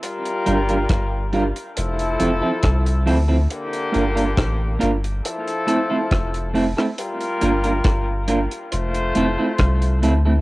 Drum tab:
HH |xxxxx-xxxxx-xxo-|xxxxx-xxxxx-xxo-|xxxxx-xxxxx-xxx-|
SD |----r-------r---|----r-------r--r|----r-------r---|
BD |----o-------o---|----o-------o---|----o-------o---|